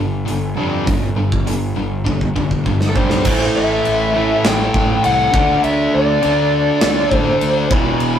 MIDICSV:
0, 0, Header, 1, 6, 480
1, 0, Start_track
1, 0, Tempo, 594059
1, 704, Time_signature, 4, 2, 24, 8
1, 6618, End_track
2, 0, Start_track
2, 0, Title_t, "Lead electric guitar"
2, 0, Program_c, 0, 29
2, 2335, Note_on_c, 0, 69, 62
2, 2391, Note_off_c, 0, 69, 0
2, 2396, Note_on_c, 0, 72, 92
2, 2874, Note_on_c, 0, 76, 99
2, 2888, Note_off_c, 0, 72, 0
2, 3608, Note_off_c, 0, 76, 0
2, 3611, Note_on_c, 0, 79, 109
2, 4074, Note_off_c, 0, 79, 0
2, 4077, Note_on_c, 0, 78, 95
2, 4553, Note_off_c, 0, 78, 0
2, 4556, Note_on_c, 0, 76, 95
2, 4799, Note_off_c, 0, 76, 0
2, 4801, Note_on_c, 0, 74, 113
2, 5770, Note_off_c, 0, 74, 0
2, 5770, Note_on_c, 0, 72, 113
2, 6240, Note_on_c, 0, 83, 124
2, 6271, Note_off_c, 0, 72, 0
2, 6618, Note_off_c, 0, 83, 0
2, 6618, End_track
3, 0, Start_track
3, 0, Title_t, "Tonewheel organ"
3, 0, Program_c, 1, 16
3, 2628, Note_on_c, 1, 57, 67
3, 2628, Note_on_c, 1, 72, 77
3, 2630, Note_on_c, 1, 64, 62
3, 4292, Note_off_c, 1, 57, 0
3, 4292, Note_off_c, 1, 72, 0
3, 4293, Note_off_c, 1, 64, 0
3, 4303, Note_on_c, 1, 76, 71
3, 4308, Note_on_c, 1, 62, 70
3, 4309, Note_on_c, 1, 69, 61
3, 6200, Note_off_c, 1, 76, 0
3, 6202, Note_off_c, 1, 62, 0
3, 6203, Note_off_c, 1, 69, 0
3, 6220, Note_on_c, 1, 71, 58
3, 6222, Note_on_c, 1, 64, 64
3, 6222, Note_on_c, 1, 79, 75
3, 6618, Note_off_c, 1, 64, 0
3, 6618, Note_off_c, 1, 71, 0
3, 6618, Note_off_c, 1, 79, 0
3, 6618, End_track
4, 0, Start_track
4, 0, Title_t, "Distorted electric guitar"
4, 0, Program_c, 2, 30
4, 0, Note_on_c, 2, 43, 63
4, 0, Note_on_c, 2, 50, 62
4, 192, Note_off_c, 2, 43, 0
4, 195, Note_off_c, 2, 50, 0
4, 209, Note_on_c, 2, 43, 72
4, 212, Note_on_c, 2, 50, 73
4, 432, Note_off_c, 2, 43, 0
4, 434, Note_off_c, 2, 50, 0
4, 460, Note_on_c, 2, 43, 88
4, 461, Note_on_c, 2, 50, 79
4, 466, Note_on_c, 2, 55, 91
4, 688, Note_off_c, 2, 43, 0
4, 689, Note_off_c, 2, 50, 0
4, 691, Note_off_c, 2, 55, 0
4, 705, Note_on_c, 2, 43, 69
4, 708, Note_on_c, 2, 50, 73
4, 922, Note_off_c, 2, 43, 0
4, 923, Note_off_c, 2, 50, 0
4, 940, Note_on_c, 2, 43, 64
4, 944, Note_on_c, 2, 50, 65
4, 1160, Note_off_c, 2, 43, 0
4, 1162, Note_off_c, 2, 50, 0
4, 1187, Note_on_c, 2, 43, 58
4, 1190, Note_on_c, 2, 50, 58
4, 1404, Note_off_c, 2, 43, 0
4, 1405, Note_off_c, 2, 50, 0
4, 1421, Note_on_c, 2, 43, 66
4, 1424, Note_on_c, 2, 50, 68
4, 1641, Note_off_c, 2, 43, 0
4, 1643, Note_off_c, 2, 50, 0
4, 1656, Note_on_c, 2, 43, 65
4, 1661, Note_on_c, 2, 50, 81
4, 1879, Note_off_c, 2, 43, 0
4, 1882, Note_off_c, 2, 50, 0
4, 1903, Note_on_c, 2, 43, 57
4, 1905, Note_on_c, 2, 50, 67
4, 2123, Note_off_c, 2, 43, 0
4, 2124, Note_off_c, 2, 50, 0
4, 2147, Note_on_c, 2, 43, 74
4, 2152, Note_on_c, 2, 50, 74
4, 2365, Note_off_c, 2, 43, 0
4, 2368, Note_off_c, 2, 50, 0
4, 2394, Note_on_c, 2, 43, 80
4, 2395, Note_on_c, 2, 50, 85
4, 2401, Note_on_c, 2, 55, 94
4, 2618, Note_off_c, 2, 43, 0
4, 2619, Note_off_c, 2, 50, 0
4, 2622, Note_off_c, 2, 55, 0
4, 2630, Note_on_c, 2, 45, 86
4, 2640, Note_on_c, 2, 52, 94
4, 2649, Note_on_c, 2, 57, 100
4, 3337, Note_off_c, 2, 45, 0
4, 3342, Note_off_c, 2, 52, 0
4, 3345, Note_off_c, 2, 57, 0
4, 3348, Note_on_c, 2, 57, 83
4, 3354, Note_on_c, 2, 52, 78
4, 3365, Note_on_c, 2, 45, 68
4, 4050, Note_off_c, 2, 45, 0
4, 4055, Note_off_c, 2, 57, 0
4, 4058, Note_off_c, 2, 52, 0
4, 4060, Note_on_c, 2, 45, 84
4, 4071, Note_on_c, 2, 52, 82
4, 4076, Note_on_c, 2, 57, 78
4, 4290, Note_off_c, 2, 45, 0
4, 4296, Note_off_c, 2, 52, 0
4, 4298, Note_off_c, 2, 57, 0
4, 4304, Note_on_c, 2, 50, 95
4, 4310, Note_on_c, 2, 57, 99
4, 4323, Note_on_c, 2, 62, 96
4, 5008, Note_off_c, 2, 50, 0
4, 5013, Note_off_c, 2, 57, 0
4, 5018, Note_on_c, 2, 50, 72
4, 5020, Note_off_c, 2, 62, 0
4, 5028, Note_on_c, 2, 57, 75
4, 5039, Note_on_c, 2, 62, 81
4, 5725, Note_off_c, 2, 50, 0
4, 5729, Note_off_c, 2, 62, 0
4, 5730, Note_off_c, 2, 57, 0
4, 5739, Note_on_c, 2, 62, 77
4, 5749, Note_on_c, 2, 57, 67
4, 5760, Note_on_c, 2, 50, 64
4, 6205, Note_off_c, 2, 62, 0
4, 6210, Note_off_c, 2, 57, 0
4, 6216, Note_off_c, 2, 50, 0
4, 6217, Note_on_c, 2, 40, 81
4, 6230, Note_on_c, 2, 47, 90
4, 6236, Note_on_c, 2, 52, 94
4, 6618, Note_off_c, 2, 40, 0
4, 6618, Note_off_c, 2, 47, 0
4, 6618, Note_off_c, 2, 52, 0
4, 6618, End_track
5, 0, Start_track
5, 0, Title_t, "Fingered electric bass"
5, 0, Program_c, 3, 33
5, 0, Note_on_c, 3, 31, 79
5, 214, Note_off_c, 3, 31, 0
5, 226, Note_on_c, 3, 31, 75
5, 453, Note_off_c, 3, 31, 0
5, 471, Note_on_c, 3, 41, 84
5, 696, Note_off_c, 3, 41, 0
5, 709, Note_on_c, 3, 31, 75
5, 1164, Note_off_c, 3, 31, 0
5, 1187, Note_on_c, 3, 31, 76
5, 1415, Note_off_c, 3, 31, 0
5, 1423, Note_on_c, 3, 31, 90
5, 1654, Note_off_c, 3, 31, 0
5, 1670, Note_on_c, 3, 31, 80
5, 1898, Note_off_c, 3, 31, 0
5, 1910, Note_on_c, 3, 31, 82
5, 2138, Note_off_c, 3, 31, 0
5, 2153, Note_on_c, 3, 31, 80
5, 2380, Note_off_c, 3, 31, 0
5, 2394, Note_on_c, 3, 35, 78
5, 2620, Note_off_c, 3, 35, 0
5, 2631, Note_on_c, 3, 33, 94
5, 2811, Note_off_c, 3, 33, 0
5, 2878, Note_on_c, 3, 33, 84
5, 3056, Note_off_c, 3, 33, 0
5, 3124, Note_on_c, 3, 33, 88
5, 3479, Note_off_c, 3, 33, 0
5, 3595, Note_on_c, 3, 33, 92
5, 3773, Note_off_c, 3, 33, 0
5, 3836, Note_on_c, 3, 33, 91
5, 4014, Note_off_c, 3, 33, 0
5, 4081, Note_on_c, 3, 36, 85
5, 4257, Note_off_c, 3, 36, 0
5, 4317, Note_on_c, 3, 38, 83
5, 4494, Note_off_c, 3, 38, 0
5, 4558, Note_on_c, 3, 38, 91
5, 4734, Note_off_c, 3, 38, 0
5, 4805, Note_on_c, 3, 38, 89
5, 4978, Note_off_c, 3, 38, 0
5, 5046, Note_on_c, 3, 38, 88
5, 5397, Note_off_c, 3, 38, 0
5, 5526, Note_on_c, 3, 38, 96
5, 5697, Note_off_c, 3, 38, 0
5, 5755, Note_on_c, 3, 45, 96
5, 5930, Note_off_c, 3, 45, 0
5, 5993, Note_on_c, 3, 38, 82
5, 6169, Note_off_c, 3, 38, 0
5, 6233, Note_on_c, 3, 28, 87
5, 6408, Note_off_c, 3, 28, 0
5, 6468, Note_on_c, 3, 28, 95
5, 6618, Note_off_c, 3, 28, 0
5, 6618, End_track
6, 0, Start_track
6, 0, Title_t, "Drums"
6, 224, Note_on_c, 9, 46, 44
6, 305, Note_off_c, 9, 46, 0
6, 705, Note_on_c, 9, 36, 94
6, 707, Note_on_c, 9, 46, 46
6, 786, Note_off_c, 9, 36, 0
6, 788, Note_off_c, 9, 46, 0
6, 1068, Note_on_c, 9, 36, 71
6, 1148, Note_off_c, 9, 36, 0
6, 1190, Note_on_c, 9, 46, 52
6, 1270, Note_off_c, 9, 46, 0
6, 1668, Note_on_c, 9, 36, 61
6, 1749, Note_off_c, 9, 36, 0
6, 1788, Note_on_c, 9, 36, 51
6, 1869, Note_off_c, 9, 36, 0
6, 1908, Note_on_c, 9, 36, 62
6, 1989, Note_off_c, 9, 36, 0
6, 2028, Note_on_c, 9, 36, 63
6, 2109, Note_off_c, 9, 36, 0
6, 2149, Note_on_c, 9, 36, 68
6, 2230, Note_off_c, 9, 36, 0
6, 2268, Note_on_c, 9, 38, 67
6, 2349, Note_off_c, 9, 38, 0
6, 2388, Note_on_c, 9, 36, 91
6, 2469, Note_off_c, 9, 36, 0
6, 2504, Note_on_c, 9, 38, 72
6, 2585, Note_off_c, 9, 38, 0
6, 2624, Note_on_c, 9, 49, 109
6, 2624, Note_on_c, 9, 57, 51
6, 2629, Note_on_c, 9, 36, 102
6, 2705, Note_off_c, 9, 49, 0
6, 2705, Note_off_c, 9, 57, 0
6, 2709, Note_off_c, 9, 36, 0
6, 3112, Note_on_c, 9, 57, 53
6, 3192, Note_off_c, 9, 57, 0
6, 3591, Note_on_c, 9, 57, 65
6, 3593, Note_on_c, 9, 38, 124
6, 3672, Note_off_c, 9, 57, 0
6, 3674, Note_off_c, 9, 38, 0
6, 3832, Note_on_c, 9, 36, 85
6, 3913, Note_off_c, 9, 36, 0
6, 4071, Note_on_c, 9, 57, 61
6, 4152, Note_off_c, 9, 57, 0
6, 4312, Note_on_c, 9, 36, 111
6, 4393, Note_off_c, 9, 36, 0
6, 4555, Note_on_c, 9, 57, 56
6, 4636, Note_off_c, 9, 57, 0
6, 5031, Note_on_c, 9, 57, 60
6, 5111, Note_off_c, 9, 57, 0
6, 5504, Note_on_c, 9, 57, 73
6, 5506, Note_on_c, 9, 38, 127
6, 5585, Note_off_c, 9, 57, 0
6, 5587, Note_off_c, 9, 38, 0
6, 5749, Note_on_c, 9, 36, 76
6, 5830, Note_off_c, 9, 36, 0
6, 5989, Note_on_c, 9, 57, 60
6, 6069, Note_off_c, 9, 57, 0
6, 6228, Note_on_c, 9, 36, 113
6, 6309, Note_off_c, 9, 36, 0
6, 6465, Note_on_c, 9, 57, 53
6, 6546, Note_off_c, 9, 57, 0
6, 6618, End_track
0, 0, End_of_file